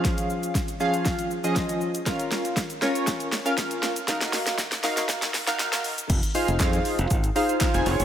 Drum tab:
CC |----------------|----------------|----------------|x---------------|
HH |xx-xxx-xxx-xxx-x|xx-xxx-xxx-xxx-x|xxoxxxoxxxoxxxox|xxoxxxoxxxoxxxox|
SH |xxxxxxxxxxxxxxxx|xxxxxxxxxxxxxxxx|xxxxxxxxxxxxxxxx|xxxxxxxxxxxxxxxx|
CP |----------------|----------------|----------------|----x-------x---|
SD |o---o---o---o---|o-o-o-o-o-o-o-o-|oooooooooooooo--|----o-------o---|
BD |o---o---o---o---|o---o---o---o---|o---o---o-------|o---o---o---o---|